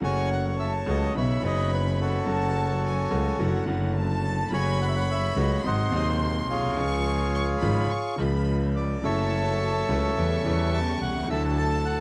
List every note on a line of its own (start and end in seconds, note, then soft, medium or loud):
0.00 0.83 F#1 loud
0.00 0.83 F#2 medium
0.00 0.82 C#3 medium
0.00 0.83 F#3 medium
0.00 0.83 A3 medium
0.00 0.84 F#4 medium
0.00 0.55 F#5 medium
0.00 0.29 G#5 loud
0.05 1.12 C#5 medium
0.32 0.45 F#5 loud
0.59 0.72 E5 loud
0.59 1.15 A5 medium
0.86 1.10 C#2 loud
0.86 1.11 C#2 medium
0.86 1.11 C#3 medium
0.86 1.10 F#3 medium
0.86 1.10 A3 medium
0.86 1.11 F#4 medium
0.86 1.15 D#5 loud
1.15 1.39 B1 medium
1.15 1.39 B2 medium
1.15 1.39 C#3 medium
1.15 1.39 F#3 medium
1.15 1.39 B3 medium
1.15 1.39 D#4 medium
1.15 2.00 C#5 medium
1.15 1.43 E5 medium
1.15 2.25 B5 medium
1.40 2.23 F#1 medium
1.40 2.24 F#1 loud
1.40 2.23 F#2 medium
1.40 2.22 C#3 medium
1.40 2.23 F#3 medium
1.40 2.23 B3 medium
1.45 2.24 D#4 medium
1.45 1.71 D#5 loud
1.74 1.86 B4 loud
2.01 3.64 F#4 medium
2.01 3.64 A4 medium
2.01 3.64 C#5 medium
2.25 3.08 F#1 loud
2.25 3.07 F#2 medium
2.25 3.06 C#3 medium
2.25 3.07 F#3 medium
2.25 3.08 A3 medium
2.25 3.08 F#4 medium
2.29 2.81 A5 loud
2.85 3.40 G#5 medium
3.11 3.35 C#2 medium
3.11 3.35 C#2 loud
3.11 3.35 C#3 medium
3.11 3.35 F#3 medium
3.11 3.35 A3 medium
3.11 3.35 F#4 medium
3.39 3.63 F#1 loud
3.39 3.63 F#2 medium
3.39 3.63 D3 medium
3.39 3.63 F#3 medium
3.39 3.63 A3 medium
3.39 3.63 E4 medium
3.39 3.97 F#5 medium
3.66 4.48 F#1 loud
3.66 4.48 F#2 medium
3.66 4.47 D3 medium
3.66 4.48 F#3 loud
3.66 4.48 A3 medium
3.66 4.49 E4 medium
3.96 4.48 A5 loud
4.25 4.51 A5 loud
4.50 5.32 F#1 loud
4.50 5.32 F#2 medium
4.50 5.31 C#3 medium
4.50 5.32 F#3 medium
4.50 5.33 A3 medium
4.50 5.61 C#5 medium
4.50 4.79 G#5 loud
4.50 5.65 B5 loud
4.54 5.33 F#4 medium
4.82 4.85 F#5 loud
4.88 4.95 E5 medium
4.97 5.09 F#5 medium
5.11 5.36 E5 loud
5.36 5.60 C#2 loud
5.36 5.60 C#3 medium
5.36 5.60 F#3 medium
5.36 5.60 A3 medium
5.36 5.60 F#4 medium
5.40 5.64 D#5 loud
5.64 5.88 G#1 medium
5.64 5.88 G#2 medium
5.64 5.88 C3 medium
5.64 5.88 F#3 medium
5.64 5.88 G#3 medium
5.64 5.88 D#4 medium
5.64 6.22 C5 medium
5.64 5.94 D#5 medium
5.64 5.95 F#5 loud
5.64 6.78 C6 loud
5.90 6.73 D#1 medium
5.90 6.47 D#2 loud
5.90 6.73 D#2 loud
5.90 6.72 C3 medium
5.90 6.73 F#3 medium
5.90 6.73 G#3 medium
5.94 6.74 D#4 loud
5.94 6.08 D#5 loud
6.23 6.35 C5 medium
6.48 6.75 B1 medium
6.48 8.15 F4 medium
6.48 8.15 G#4 medium
6.52 6.63 A#1 medium
6.52 8.16 C#5 loud
6.63 6.70 B1 medium
6.70 6.77 C2 medium
6.75 7.57 C#2 loud
6.75 7.58 C#2 medium
6.75 7.58 C#3 medium
6.75 7.58 F3 medium
6.75 7.58 G#3 medium
6.75 7.59 F4 medium
6.75 7.34 C#6 loud
7.35 7.47 C#6 loud
7.61 7.86 G#1 loud
7.61 7.86 G#2 loud
7.61 7.86 C#3 medium
7.61 7.86 F3 medium
7.61 7.86 G#3 medium
7.61 7.86 F4 medium
7.61 7.88 B5 loud
7.90 8.19 C#6 loud
8.16 9.00 C#2 medium
8.16 9.00 C#2 loud
8.16 8.17 C#3 medium
8.16 9.00 C#3 loud
8.16 9.00 F3 medium
8.16 9.00 G#3 medium
8.16 8.76 B5 loud
8.20 9.01 F4 medium
8.76 9.05 D5 medium
9.02 9.85 F#1 loud
9.02 9.85 F#2 medium
9.02 9.84 C#3 medium
9.02 9.85 F#3 medium
9.02 9.85 A3 medium
9.02 9.85 E4 medium
9.02 9.86 E4 medium
9.02 9.85 F#4 medium
9.02 10.70 A4 medium
9.02 10.70 C#5 medium
9.02 10.79 E5 loud
9.02 10.14 A5 loud
9.89 10.13 C#2 medium
9.89 10.13 C#3 loud
9.89 10.13 F#3 medium
9.89 10.13 A3 medium
9.89 10.13 E4 medium
9.89 10.13 F#4 medium
10.17 10.41 E2 loud
10.17 10.41 E2 medium
10.17 10.41 C#3 medium
10.17 10.41 E3 medium
10.17 10.41 G3 medium
10.17 10.41 A3 medium
10.17 10.42 A3 medium
10.17 10.41 C#4 medium
10.17 10.42 E4 medium
10.17 10.41 G4 loud
10.17 11.30 C#6 medium
10.43 11.26 E2 loud
10.43 11.01 E2 loud
10.43 11.24 C#3 medium
10.43 11.25 E3 medium
10.43 11.25 G3 medium
10.43 11.25 A3 medium
10.43 11.26 A3 medium
10.43 11.26 C#4 medium
10.43 11.26 G4 loud
10.48 11.27 E4 medium
10.73 11.00 A5 loud
11.01 11.29 C2 medium
11.01 11.28 F#5 loud
11.09 11.16 B1 soft
11.15 11.23 C2 medium
11.23 11.30 C#2 medium
11.28 12.00 D2 loud
11.28 12.00 D2 medium
11.28 12.00 D3 medium
11.28 12.00 F#3 medium
11.28 12.00 A3 medium
11.28 12.00 D4 medium
11.28 12.00 E4 medium
11.28 12.00 F#4 loud
11.28 12.00 A4 medium
11.28 11.43 E5 loud
11.28 12.00 A5 loud
11.32 12.00 E4 medium
11.58 11.87 A5 loud
11.85 11.98 F#5 loud